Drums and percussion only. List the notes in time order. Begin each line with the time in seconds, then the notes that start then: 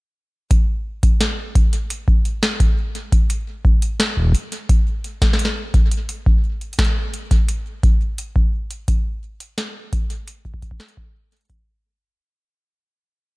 0.51 kick, closed hi-hat
1.03 kick, closed hi-hat
1.21 snare, closed hi-hat
1.55 kick, closed hi-hat
1.73 closed hi-hat
1.90 closed hi-hat
2.08 kick
2.25 closed hi-hat
2.43 snare, closed hi-hat
2.60 kick, closed hi-hat
2.95 closed hi-hat
3.12 kick, closed hi-hat
3.30 closed hi-hat
3.65 kick
3.82 closed hi-hat
4.00 snare, closed hi-hat
4.17 kick
4.20 kick
4.22 kick
4.25 kick
4.27 kick
4.29 kick
4.32 kick, closed hi-hat
4.52 closed hi-hat
4.69 kick, closed hi-hat
5.04 closed hi-hat
5.22 kick, snare, closed hi-hat
5.33 snare
5.39 closed hi-hat
5.45 snare
5.74 kick, closed hi-hat
5.91 closed hi-hat
6.09 closed hi-hat
6.26 kick
6.61 closed hi-hat
6.73 closed hi-hat
6.79 kick, snare, closed hi-hat
6.85 closed hi-hat
7.14 closed hi-hat
7.31 kick, closed hi-hat
7.49 closed hi-hat
7.83 kick, closed hi-hat
8.18 closed hi-hat
8.36 kick
8.71 closed hi-hat
8.88 kick, closed hi-hat
9.40 closed hi-hat
9.58 snare, closed hi-hat
9.93 kick, closed hi-hat
10.10 closed hi-hat
10.28 closed hi-hat
10.45 kick
10.54 kick
10.62 kick, closed hi-hat
10.71 kick
10.80 snare, closed hi-hat
10.89 closed hi-hat
10.97 kick
11.32 closed hi-hat
11.37 closed hi-hat
11.45 closed hi-hat
11.50 kick, closed hi-hat